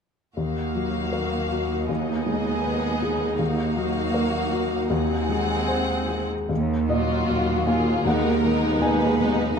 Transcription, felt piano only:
0.37 D#2
0.75 F#3
1.13 A#4
1.51 F#4
1.89 D#2
2.26 G#3
2.64 B4
3.02 G#4
3.39 D#2
3.77 F#3
4.14 A#4
4.52 F#4
4.90 D#2
5.29 G#3
5.68 C5
6.08 G#4
6.49 D#2
6.88 A#2 D#5
7.28 F#3 A#3 F5
7.67 A#3 F5
8.05 D#2 F#5
8.43 D#3
8.81 B3 G#4 D#5 G#5
9.19 B3

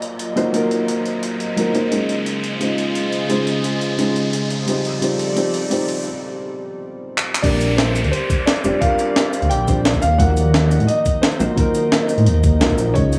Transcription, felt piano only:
Already playing: F#3 A#3 D#4 F4 A#4
0.36 F#3 A#3 D#4 F4 C5
0.52 F#3 A#3 D#4 F4 A#4
1.57 F#3 A#3 D#4 F4 A#4
1.74 F#3 A#3 D#4 F4 C5
1.90 G#3 C#4 D#4 F4 C5
2.59 G#3 C#4 D#4 F4 C5
3.28 G#3 C#4 D#4 F4 C5
3.97 G#3 C#4 D#4 F4 C5
4.66 G3 C4 D#4 F4 C5
5.00 G3 C4 D#4 F4 C5
5.35 G3 C4 D#4 F4 C5
5.69 G3 C4 D#4 F4 C5
7.42 G3 C4 D4 F4 A#4
8.64 G3 C4 D4 F4 C5
8.80 G3 C4 D4 F4 A#4
9.67 G3 C4 D4 F4 C5
10.18 F3 F#3 A#3 D#4 A#4
11.39 F#3 A#3 D#4 F4 C5
11.56 F#3 A#3 D#4 F4 A#4
12.60 F#3 A#3 D#4 F4 A#4
12.77 F#3 A#3 D#4 F4 C5
12.94 G#3 C#4 D#4 F4 D#5

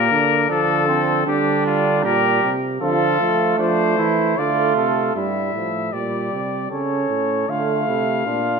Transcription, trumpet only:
Already playing: A#4
0.50 A4
1.27 G4
1.66 F4
2.05 A#4
2.82 A4
3.60 C5
4.38 D5
4.77 A4
5.16 E5
5.93 D5
6.71 C#5
7.50 F5

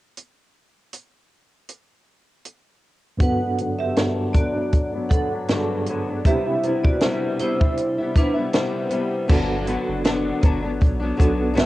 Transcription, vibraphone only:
3.21 B4 F#5
3.79 G4 E5
4.33 F#4 D5
5.10 A4 F#5
6.26 G4 E5
6.84 F#4 D5
7.40 E4 C5
8.16 D4 B4

